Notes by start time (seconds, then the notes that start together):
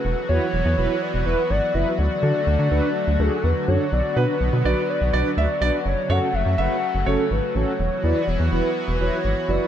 Already playing: F#3 F#4 B4
0.05 E1 E3 B3
0.29 E2 E4 F#4 B4 C#5
0.53 E1
0.65 E2
0.78 E1 E4 F#4 B4
1.02 D5
1.14 E1
1.26 E1 E4 F#4 B4
1.50 G#1 D5
1.74 F#1 E4 F#4 B4 E5
1.99 D2 D3 A3 D5
2.23 D3 D4 F#4 A4
2.47 D2
2.59 D3
2.71 D2 D4 F#4 B4
3.08 D2
3.19 D2 D4 F#4 G#4 A4
3.44 E2 B4
3.68 F#2 D4 F#4 A4 C#5
3.92 B1 B3 D5
4.16 B2 D4 F#4 B4
4.41 B1
4.53 B2
4.65 B1 D4 F#4 B4 D5
4.89 D5
5.01 B1
5.13 B1 D4 F#4 B4 D5
5.37 D2 D5 E5
5.61 B1 D4 F#4 B4 D5
5.86 F#1 C#3 A3 C#5
6.10 F#2 C#4 F#4 A4 C#5 F#5
6.34 F#1 E5
6.46 F#2
6.58 F#1 C#4 F#4 B4 E5 F#5
6.95 F#1
7.06 F#1 C#4 F#4 A4 C#5
7.31 G#1 B4
7.55 A1 C#4 F#4 A4 C#5
7.79 E1 E3 B3 F#4
8.03 E2 E4 F#4 B4 D5
8.28 E1 C#5
8.40 E2
8.52 E1 E4 F#4 B4
8.88 E1
9.00 E1 E4 F#4 B4 C#5
9.25 G#1
9.49 F#1 E4 F#4 B4 D5